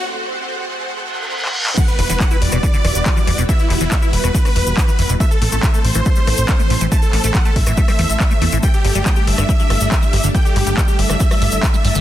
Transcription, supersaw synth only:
\new Staff \with { instrumentName = "Supersaw synth" } { \time 4/4 \key e \minor \tempo 4 = 140 << { r1 | fis''8 r8 fis''8 d''2~ d''8 | e''8 r8 e''8 b'2~ b'8 | e''8 r8 e''8 c''2~ c''8 |
a''8 r8 fis''8 e''2~ e''8 | g''8 r8 g''8 e''2~ e''8 | g''8 r8 g''8 e''2~ e''8 | } \\ { r1 | r16 b'16 b'16 b'16 r16 b'16 r2 r8 | r16 e'16 e'16 e'16 r16 e'16 r2 r8 | r16 a'16 a'16 a'16 r16 a'16 r2 r8 |
r16 a'16 a'16 a'16 r16 a'16 r2 r8 | r16 g'16 g'16 g'16 r16 g'16 r2 r8 | r16 g'16 g'16 g'16 r16 g'16 r2 r8 | } >> }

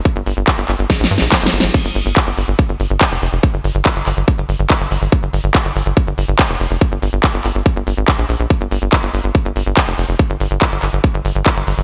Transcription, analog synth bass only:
\new Staff \with { instrumentName = "Analog synth bass" } { \clef bass \time 4/4 \key g \minor \tempo 4 = 142 r16 g,,16 g,,16 g,,16 r16 g,,16 g,,16 g,,16 r16 bes,,16 g,16 bes,,16 r16 g,,16 g,,16 g,,16 | r16 g,,16 g,,16 g,,16 r16 g,,16 g,,16 g,,16 r16 g,,16 g,,16 g,,16 r16 f,,16 f,,16 f,,16 | r16 g,,16 g,,16 g,,16 r16 g,,16 g,,16 g,,16 r16 g,,16 g,,16 g,,16 r16 g,,16 g,,16 g,,16 | r16 g,,16 g,,16 g,,16 r16 g,,16 g,,16 g,,16 r16 g,,16 g,,16 g,,16 r16 f,,16 f,,16 f,,16 |
r16 g,,16 g,,16 g,,16 r16 g,,16 g,,16 g,,16 r16 g,,16 g,,16 aes,,16 r16 bes,,16 bes,,16 bes,,16 | r16 g,,16 g,,16 g,,16 r16 g,,16 g,,16 g,,16 r16 g,,16 g,,16 g,,16 r16 f,,16 f,,16 f,,16 | r16 g,,16 g,,16 g,,16 r16 g,,16 g,,16 g,,16 r16 g,,16 g,,16 g,,16 r16 g,,16 g,,16 g,,16 | }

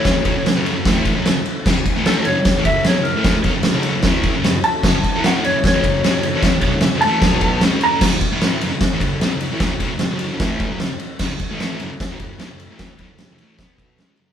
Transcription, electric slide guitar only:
\new Staff \with { instrumentName = "Electric slide guitar" } { \time 4/4 \key b \major \tempo 4 = 151 cis''4. r2 r8 | r4 a'8 cis''4 e''8 cis''8 ais'8~ | ais'4. r2 a''8~ | a''4 fis''8 cis''8 cis''2~ |
cis''4 r8 a''4. r8 ais''8 | \key b \lydian r1 | r1 | r1 |
r1 | }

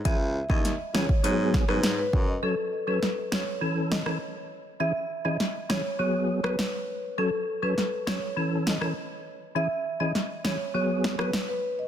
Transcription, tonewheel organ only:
\new Staff \with { instrumentName = "Tonewheel organ" } { \time 4/4 \key gis \phrygian \tempo 4 = 101 <e cis' gis'>16 r8 <e cis' gis'>16 r8 <e cis' gis'>16 r16 <fis b gis'>8. <fis b gis'>16 r4 | <fis cis' a'>16 r8 <fis cis' a'>16 r8 <fis cis' a'>16 r16 <e cis' a'>8. <e cis' a'>16 r4 | <e cis' gis'>16 r8 <e cis' gis'>16 r8 <e cis' gis'>16 r16 <fis b gis'>8. <fis b gis'>16 r4 | <fis cis' a'>16 r8 <fis cis' a'>16 r8 <fis cis' a'>16 r16 <e cis' a'>8. <e cis' a'>16 r4 |
<e cis' gis'>16 r8 <e cis' gis'>16 r8 <e cis' gis'>16 r16 <fis b gis'>8. <fis b gis'>16 r4 | }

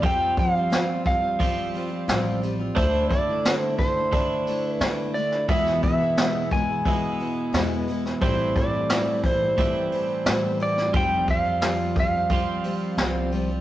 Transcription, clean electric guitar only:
\new Staff \with { instrumentName = "Clean electric guitar" } { \clef bass \time 4/4 \key f \lydian \tempo 4 = 88 <f g c' f'>2 <f g c' f'>2 | <d a d' e'>2 <d a d' e'>2 | <e, b, e gis b e'>2 <e, b, e gis b e'>2 | <a, e g c' e'>2 <a, e g c' e'>2 |
<f g c' f'>2 <f g c' f'>2 | }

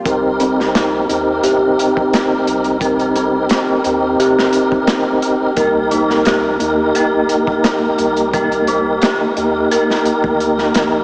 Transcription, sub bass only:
\new Staff \with { instrumentName = "Sub bass" } { \clef bass \time 4/4 \key c \minor \tempo 4 = 87 c,4. ees,8 g,,4. c,8~ | c,4 r8 ees,8 r2 | c,4. ees,8 g,,4. c,8~ | c,4 r8 ees,8 r8. d,8. bes,,8 | }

